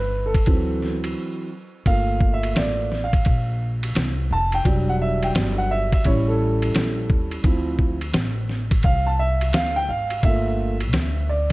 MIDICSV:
0, 0, Header, 1, 5, 480
1, 0, Start_track
1, 0, Tempo, 697674
1, 1282, Time_signature, 4, 2, 24, 8
1, 7928, End_track
2, 0, Start_track
2, 0, Title_t, "Grand piano"
2, 0, Program_c, 0, 0
2, 0, Note_on_c, 0, 71, 90
2, 178, Note_on_c, 0, 69, 81
2, 180, Note_off_c, 0, 71, 0
2, 321, Note_on_c, 0, 52, 54
2, 327, Note_on_c, 0, 54, 53
2, 332, Note_on_c, 0, 60, 64
2, 623, Note_off_c, 0, 69, 0
2, 1014, Note_off_c, 0, 52, 0
2, 1017, Note_off_c, 0, 54, 0
2, 1019, Note_off_c, 0, 60, 0
2, 1280, Note_on_c, 0, 57, 52
2, 1282, Note_on_c, 0, 58, 56
2, 1287, Note_on_c, 0, 65, 62
2, 1287, Note_on_c, 0, 77, 110
2, 1607, Note_on_c, 0, 76, 94
2, 1614, Note_off_c, 0, 77, 0
2, 1769, Note_off_c, 0, 76, 0
2, 1769, Note_on_c, 0, 74, 90
2, 1974, Note_off_c, 0, 57, 0
2, 1975, Note_off_c, 0, 58, 0
2, 1977, Note_off_c, 0, 65, 0
2, 2090, Note_on_c, 0, 77, 92
2, 2095, Note_off_c, 0, 74, 0
2, 2539, Note_off_c, 0, 77, 0
2, 2976, Note_on_c, 0, 81, 108
2, 3113, Note_off_c, 0, 81, 0
2, 3127, Note_on_c, 0, 79, 99
2, 3197, Note_on_c, 0, 55, 58
2, 3200, Note_on_c, 0, 62, 52
2, 3206, Note_on_c, 0, 54, 65
2, 3345, Note_off_c, 0, 79, 0
2, 3367, Note_on_c, 0, 78, 97
2, 3401, Note_off_c, 0, 78, 0
2, 3451, Note_on_c, 0, 76, 93
2, 3605, Note_off_c, 0, 76, 0
2, 3605, Note_on_c, 0, 79, 91
2, 3658, Note_off_c, 0, 79, 0
2, 3841, Note_on_c, 0, 78, 89
2, 3927, Note_off_c, 0, 78, 0
2, 3929, Note_on_c, 0, 76, 99
2, 4069, Note_off_c, 0, 76, 0
2, 4084, Note_on_c, 0, 76, 93
2, 4132, Note_off_c, 0, 55, 0
2, 4134, Note_off_c, 0, 62, 0
2, 4137, Note_off_c, 0, 54, 0
2, 4164, Note_on_c, 0, 55, 59
2, 4167, Note_on_c, 0, 61, 54
2, 4168, Note_off_c, 0, 76, 0
2, 4170, Note_on_c, 0, 73, 90
2, 4171, Note_on_c, 0, 64, 66
2, 4320, Note_on_c, 0, 69, 82
2, 4324, Note_off_c, 0, 73, 0
2, 5011, Note_off_c, 0, 69, 0
2, 5096, Note_off_c, 0, 55, 0
2, 5097, Note_off_c, 0, 61, 0
2, 5099, Note_off_c, 0, 64, 0
2, 5121, Note_on_c, 0, 53, 54
2, 5124, Note_on_c, 0, 60, 57
2, 5128, Note_on_c, 0, 64, 65
2, 5466, Note_off_c, 0, 53, 0
2, 5468, Note_off_c, 0, 60, 0
2, 5470, Note_off_c, 0, 64, 0
2, 6086, Note_on_c, 0, 77, 108
2, 6237, Note_on_c, 0, 81, 102
2, 6242, Note_off_c, 0, 77, 0
2, 6325, Note_off_c, 0, 81, 0
2, 6325, Note_on_c, 0, 76, 101
2, 6564, Note_on_c, 0, 77, 107
2, 6571, Note_off_c, 0, 76, 0
2, 6706, Note_off_c, 0, 77, 0
2, 6716, Note_on_c, 0, 79, 112
2, 6796, Note_off_c, 0, 79, 0
2, 6804, Note_on_c, 0, 77, 96
2, 7043, Note_on_c, 0, 57, 58
2, 7047, Note_on_c, 0, 58, 58
2, 7048, Note_on_c, 0, 76, 103
2, 7050, Note_off_c, 0, 77, 0
2, 7051, Note_on_c, 0, 65, 65
2, 7387, Note_off_c, 0, 57, 0
2, 7390, Note_off_c, 0, 58, 0
2, 7392, Note_off_c, 0, 65, 0
2, 7770, Note_on_c, 0, 74, 87
2, 7787, Note_off_c, 0, 76, 0
2, 7928, Note_off_c, 0, 74, 0
2, 7928, End_track
3, 0, Start_track
3, 0, Title_t, "Upright bass"
3, 0, Program_c, 1, 32
3, 0, Note_on_c, 1, 31, 92
3, 299, Note_off_c, 1, 31, 0
3, 324, Note_on_c, 1, 38, 99
3, 779, Note_off_c, 1, 38, 0
3, 1278, Note_on_c, 1, 31, 100
3, 1736, Note_off_c, 1, 31, 0
3, 1759, Note_on_c, 1, 33, 94
3, 2217, Note_off_c, 1, 33, 0
3, 2243, Note_on_c, 1, 34, 100
3, 2699, Note_off_c, 1, 34, 0
3, 2720, Note_on_c, 1, 36, 100
3, 2949, Note_off_c, 1, 36, 0
3, 2963, Note_on_c, 1, 29, 99
3, 3191, Note_off_c, 1, 29, 0
3, 3201, Note_on_c, 1, 28, 108
3, 3658, Note_off_c, 1, 28, 0
3, 3683, Note_on_c, 1, 31, 97
3, 4057, Note_off_c, 1, 31, 0
3, 4167, Note_on_c, 1, 33, 114
3, 4621, Note_off_c, 1, 33, 0
3, 4641, Note_on_c, 1, 34, 91
3, 4870, Note_off_c, 1, 34, 0
3, 4885, Note_on_c, 1, 39, 91
3, 5111, Note_off_c, 1, 39, 0
3, 5119, Note_on_c, 1, 38, 119
3, 5577, Note_off_c, 1, 38, 0
3, 5596, Note_on_c, 1, 33, 100
3, 6055, Note_off_c, 1, 33, 0
3, 6084, Note_on_c, 1, 36, 101
3, 6556, Note_off_c, 1, 36, 0
3, 6556, Note_on_c, 1, 38, 89
3, 6787, Note_off_c, 1, 38, 0
3, 6802, Note_on_c, 1, 32, 84
3, 7030, Note_off_c, 1, 32, 0
3, 7038, Note_on_c, 1, 31, 103
3, 7521, Note_off_c, 1, 31, 0
3, 7521, Note_on_c, 1, 38, 92
3, 7928, Note_off_c, 1, 38, 0
3, 7928, End_track
4, 0, Start_track
4, 0, Title_t, "Muted upright bass strokes"
4, 4079, Note_on_c, 9, 29, 49
4, 4147, Note_off_c, 9, 29, 0
4, 7928, End_track
5, 0, Start_track
5, 0, Title_t, "Drums"
5, 237, Note_on_c, 9, 36, 99
5, 238, Note_on_c, 9, 51, 61
5, 306, Note_off_c, 9, 36, 0
5, 307, Note_off_c, 9, 51, 0
5, 317, Note_on_c, 9, 51, 64
5, 325, Note_on_c, 9, 36, 102
5, 385, Note_off_c, 9, 51, 0
5, 394, Note_off_c, 9, 36, 0
5, 567, Note_on_c, 9, 38, 34
5, 636, Note_off_c, 9, 38, 0
5, 714, Note_on_c, 9, 51, 62
5, 783, Note_off_c, 9, 51, 0
5, 1279, Note_on_c, 9, 36, 97
5, 1279, Note_on_c, 9, 51, 63
5, 1348, Note_off_c, 9, 36, 0
5, 1348, Note_off_c, 9, 51, 0
5, 1517, Note_on_c, 9, 36, 91
5, 1586, Note_off_c, 9, 36, 0
5, 1674, Note_on_c, 9, 51, 62
5, 1743, Note_off_c, 9, 51, 0
5, 1760, Note_on_c, 9, 44, 48
5, 1760, Note_on_c, 9, 51, 76
5, 1765, Note_on_c, 9, 38, 122
5, 1829, Note_off_c, 9, 44, 0
5, 1829, Note_off_c, 9, 51, 0
5, 1833, Note_off_c, 9, 38, 0
5, 2007, Note_on_c, 9, 38, 36
5, 2076, Note_off_c, 9, 38, 0
5, 2154, Note_on_c, 9, 36, 103
5, 2154, Note_on_c, 9, 51, 60
5, 2223, Note_off_c, 9, 36, 0
5, 2223, Note_off_c, 9, 51, 0
5, 2235, Note_on_c, 9, 51, 68
5, 2244, Note_on_c, 9, 36, 94
5, 2304, Note_off_c, 9, 51, 0
5, 2313, Note_off_c, 9, 36, 0
5, 2635, Note_on_c, 9, 51, 67
5, 2704, Note_off_c, 9, 51, 0
5, 2719, Note_on_c, 9, 44, 56
5, 2719, Note_on_c, 9, 51, 70
5, 2727, Note_on_c, 9, 38, 109
5, 2788, Note_off_c, 9, 44, 0
5, 2788, Note_off_c, 9, 51, 0
5, 2796, Note_off_c, 9, 38, 0
5, 3112, Note_on_c, 9, 51, 56
5, 3180, Note_off_c, 9, 51, 0
5, 3201, Note_on_c, 9, 36, 98
5, 3202, Note_on_c, 9, 51, 66
5, 3270, Note_off_c, 9, 36, 0
5, 3271, Note_off_c, 9, 51, 0
5, 3596, Note_on_c, 9, 51, 57
5, 3664, Note_off_c, 9, 51, 0
5, 3681, Note_on_c, 9, 44, 54
5, 3681, Note_on_c, 9, 51, 78
5, 3686, Note_on_c, 9, 38, 104
5, 3750, Note_off_c, 9, 44, 0
5, 3750, Note_off_c, 9, 51, 0
5, 3754, Note_off_c, 9, 38, 0
5, 4076, Note_on_c, 9, 36, 100
5, 4076, Note_on_c, 9, 51, 58
5, 4145, Note_off_c, 9, 36, 0
5, 4145, Note_off_c, 9, 51, 0
5, 4158, Note_on_c, 9, 51, 70
5, 4165, Note_on_c, 9, 36, 101
5, 4227, Note_off_c, 9, 51, 0
5, 4234, Note_off_c, 9, 36, 0
5, 4556, Note_on_c, 9, 51, 62
5, 4625, Note_off_c, 9, 51, 0
5, 4641, Note_on_c, 9, 44, 50
5, 4641, Note_on_c, 9, 51, 71
5, 4648, Note_on_c, 9, 38, 110
5, 4709, Note_off_c, 9, 44, 0
5, 4709, Note_off_c, 9, 51, 0
5, 4717, Note_off_c, 9, 38, 0
5, 4882, Note_on_c, 9, 36, 106
5, 4951, Note_off_c, 9, 36, 0
5, 5032, Note_on_c, 9, 51, 52
5, 5101, Note_off_c, 9, 51, 0
5, 5117, Note_on_c, 9, 51, 67
5, 5119, Note_on_c, 9, 36, 109
5, 5186, Note_off_c, 9, 51, 0
5, 5188, Note_off_c, 9, 36, 0
5, 5357, Note_on_c, 9, 36, 81
5, 5426, Note_off_c, 9, 36, 0
5, 5512, Note_on_c, 9, 51, 60
5, 5581, Note_off_c, 9, 51, 0
5, 5597, Note_on_c, 9, 44, 49
5, 5597, Note_on_c, 9, 51, 74
5, 5601, Note_on_c, 9, 38, 114
5, 5665, Note_off_c, 9, 44, 0
5, 5665, Note_off_c, 9, 51, 0
5, 5670, Note_off_c, 9, 38, 0
5, 5844, Note_on_c, 9, 38, 36
5, 5913, Note_off_c, 9, 38, 0
5, 5993, Note_on_c, 9, 51, 66
5, 5994, Note_on_c, 9, 36, 94
5, 6062, Note_off_c, 9, 51, 0
5, 6063, Note_off_c, 9, 36, 0
5, 6074, Note_on_c, 9, 51, 69
5, 6083, Note_on_c, 9, 36, 105
5, 6143, Note_off_c, 9, 51, 0
5, 6152, Note_off_c, 9, 36, 0
5, 6476, Note_on_c, 9, 51, 62
5, 6544, Note_off_c, 9, 51, 0
5, 6557, Note_on_c, 9, 44, 52
5, 6557, Note_on_c, 9, 51, 77
5, 6564, Note_on_c, 9, 38, 113
5, 6626, Note_off_c, 9, 44, 0
5, 6626, Note_off_c, 9, 51, 0
5, 6633, Note_off_c, 9, 38, 0
5, 6951, Note_on_c, 9, 51, 57
5, 7020, Note_off_c, 9, 51, 0
5, 7039, Note_on_c, 9, 36, 98
5, 7039, Note_on_c, 9, 51, 73
5, 7108, Note_off_c, 9, 36, 0
5, 7108, Note_off_c, 9, 51, 0
5, 7434, Note_on_c, 9, 51, 61
5, 7503, Note_off_c, 9, 51, 0
5, 7520, Note_on_c, 9, 44, 49
5, 7520, Note_on_c, 9, 51, 80
5, 7524, Note_on_c, 9, 38, 115
5, 7588, Note_off_c, 9, 44, 0
5, 7588, Note_off_c, 9, 51, 0
5, 7593, Note_off_c, 9, 38, 0
5, 7928, End_track
0, 0, End_of_file